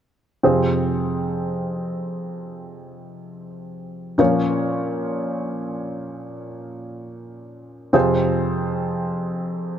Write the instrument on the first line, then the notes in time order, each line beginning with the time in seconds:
upright piano
0.43 F2 C3 C4 F4 G#4 C5
4.18 A#2 F3 C#4 F4 A#4 C#5
7.93 F2 C3 C4 F4 G#4 C5